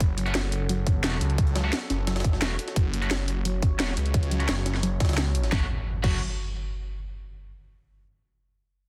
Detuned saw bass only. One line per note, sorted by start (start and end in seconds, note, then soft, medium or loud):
0.00 0.34 F#1 medium
0.35 0.85 F#1 loud
0.87 1.02 G1 medium
1.04 1.20 E1 loud
1.21 1.71 C#2 loud
1.90 2.23 F#1 loud
2.25 2.40 G1 loud
2.42 2.58 E1 medium
2.76 3.09 F#1 medium
3.11 3.61 F#1 loud
3.62 3.78 G1 loud
3.80 3.96 E1 loud
3.97 4.47 C#2 loud
4.49 4.99 F#1 loud
5.00 5.51 C#2 medium
5.52 5.62 F#1 loud
6.04 6.20 F#1 loud